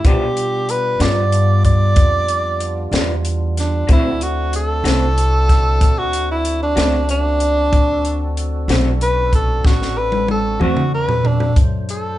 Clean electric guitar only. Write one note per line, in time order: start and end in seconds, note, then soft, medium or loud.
0.05 0.24 G2 medium
0.05 0.24 F3 medium
0.05 0.24 B3 medium
0.05 0.25 D4 medium
1.00 1.20 G2 medium
1.00 1.20 F3 soft
1.00 1.20 B3 medium
1.00 1.19 D4 medium
2.92 3.13 G2 medium
2.92 3.12 F3 medium
2.92 3.12 B3 medium
2.92 3.12 D4 medium
3.88 4.07 D3 medium
3.88 4.08 A3 medium
3.88 4.08 C4 medium
3.88 4.09 F#4 medium
4.84 5.05 D3 soft
4.84 5.04 A3 soft
4.84 5.04 C4 medium
4.84 5.04 F#4 medium
6.76 6.97 D3 medium
6.76 6.96 A3 medium
6.76 6.96 C4 medium
6.76 6.95 F#4 medium
8.69 8.89 D3 medium
8.69 8.89 A3 medium
8.69 8.89 C4 medium
8.69 8.88 F#4 medium
10.60 10.81 D3 soft
10.60 10.81 A3 medium
10.60 10.80 C4 soft
10.60 10.80 F#4 medium